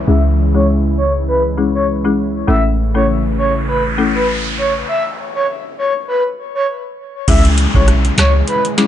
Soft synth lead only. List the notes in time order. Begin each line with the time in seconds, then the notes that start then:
0.07 E5
0.55 C#5
0.98 C#5
1.28 B4
1.75 C#5
2.48 E5
2.95 C#5
3.38 C#5
3.68 B4
4.15 B4
4.58 C#5
4.88 E5
5.35 C#5
5.78 C#5
6.08 B4
6.55 C#5
7.28 E5
7.75 C#5
8.18 C#5
8.48 B4